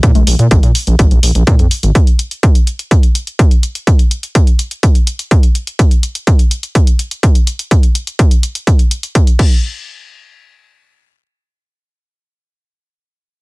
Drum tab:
CC |----------------|----------------|----------------|----------------|
HH |xxoxxxoxxxoxxxox|xxxxxxxxxxxxxxxx|xxxxxxxxxxxxxxxx|xxxxxxxxxxxxxxxx|
CG |-O--------------|----------------|----------------|----------------|
BD |o---o---o---o---|o---o---o---o---|o---o---o---o---|o---o---o---o---|

CC |--------------x-|----------------|----------------|
HH |xxxxxxxxxxxxxx--|----------------|----------------|
CG |----------------|----------------|----------------|
BD |o---o---o---o-o-|----------------|----------------|